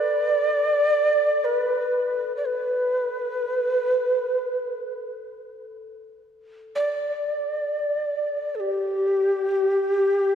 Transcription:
Already playing: A4 D5
1.44 B4
2.37 D5
2.45 B4
6.75 D5
8.55 A4
8.60 G4

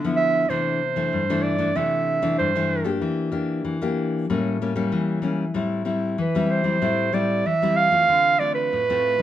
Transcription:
Already playing: D3
0.04 F3 B3 E4
0.17 E5
0.49 C3 E3 A3 D4 C5
0.96 E3 A3 D4
1.13 G2
1.30 E3 A3 D4
1.43 D5
1.58 E3 A3 D4
1.75 C3 E3 A3 D4 E5
2.22 E3 A3 D4
2.38 G2 C5
2.56 E3 A3 D4
2.84 A#3 D4 G4
3.02 E3
3.32 A#3 D4 G4
3.65 E3
3.82 A#3 D4 G4
4.30 A2 G3 A#3 C#4
4.62 G3 A#3 C#4
4.76 G3 A#3 C#4
4.92 E3
5.22 G3 A#3 C#4
5.54 A2 G3 C4 E4
5.85 G3 C4 E4
6.18 E3 B4
6.35 G3 C4 E4
6.51 C5
6.64 G3 C4 E4
6.82 A2 G3 C4 E4
7.13 G3 C4 E4 D5
7.46 E3 E5
7.62 G3 C4 E4
7.77 F5
7.91 A3 C4 F4
8.09 D3
8.39 A3 C4 F4 D5
8.55 B4
8.73 A2
8.90 A3 C4 F4
9.18 F3 B3

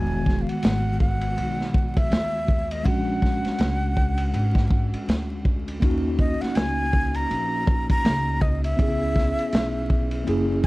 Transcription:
Already playing: E1 D#3 G#3 B3 F#4 G#5
0.26 kick, snare
0.41 F5
0.49 F#5, muted upright bass stroke, ride
0.63 G#1, snare, hi-hat pedal, ride
1.00 F#5, kick
1.21 ride
1.37 B1, ride
1.61 snare
1.74 kick
1.88 F#5
1.97 E5, kick, ride
2.11 D#2, snare, hi-hat pedal, ride
2.48 kick
2.71 D#5, ride
2.83 A#1 G#3 C#4 D4 F#5, kick, ride
2.88 F#4
3.22 kick, snare
3.44 muted upright bass stroke, snare, ride
3.58 C#2, snare, hi-hat pedal, ride
3.97 kick
4.18 ride
4.34 G#1, ride
4.55 kick, snare
4.71 kick
4.93 muted upright bass stroke, ride
5.08 D2, snare, hi-hat pedal, ride
5.45 kick
5.68 ride
5.80 D#2 A#3 C#4 D#4, kick, ride
5.85 F#4
6.19 D#5, kick
6.41 F#5, muted upright bass stroke, snare, ride
6.55 C#2 G#5, snare, hi-hat pedal, ride
6.93 kick
7.14 A#5, ride
7.30 A#1, ride
7.67 kick
7.90 A#5, kick, ride
8.05 C#2, snare, hi-hat pedal, ride
8.42 D#5, kick
8.64 E5, ride
8.77 C#2 B3 C#4 E4, kick, ride
8.82 G#4
9.16 kick, snare
9.38 muted upright bass stroke, ride
9.52 B1, snare, hi-hat pedal, ride
9.90 kick
10.11 ride
10.24 F#1 A#3 C#4 E4, ride
10.29 G#4
10.64 G#5, kick

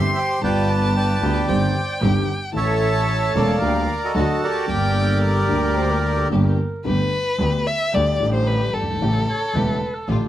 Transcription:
Already playing: G1 G2 E3 G3 C4 E4 G4 C5 E5 C6
0.17 G5
0.41 G1 G2 D3 G3 B3 F4 G4 B4 D5 G5 A5
0.70 A5
0.96 B4 D5 G5
1.22 D2 D3 G3 B3 F4 G4
1.48 G1 G2 D#3 G3 C4 D#4 G4 C5 G5
2.01 G1 G2 D#3 G3 C4 D#4 G4
2.52 A1 A2 E3 A3 C#4 E4 A4 A5
2.56 A4 C#5 E5
3.35 E1 E2 E3 A3 C#4 E4 A4 A#4 D5 F5
3.61 D2 D3 G3 A#3 D4 G4 A#5
4.05 F#4 A4 D#5
4.15 D2 D3 F#3 A3 D4 F#4 A5
4.44 G4 A#4 D5
4.66 G1 G2 D3 G3 A#3 D4 G4 G5
4.70 G4
4.90 A#4
4.96 A4
5.23 A#5
5.48 D2 D3 G3 A#3 D4 G4 A#4
5.77 C5
5.91 A#4
6.18 A4
6.30 G1 G2 D3 G3 A#3 D4 G4
6.45 A#4
6.84 G1 G2 D3 A3 B3 G4 B4
7.39 D2 D3 A3 B3 G4
7.67 E5
7.93 D2 D3 G3 A3 D4 G4 D5
8.19 A1 A2 D3 G3 A3 D4 G4
8.34 C5
8.47 B4
8.74 G1 A4
8.81 F#1
8.88 G1
8.95 G#1
9.01 A1 A2 C#3 G3 A3 C#4 E4 G4
9.29 C#5
9.55 E1 E2 C#3 G3 A3 C#4 E4 G4 B4
9.95 A4
10.08 A1 A2 D3 F3 A3 D4 F4 G4

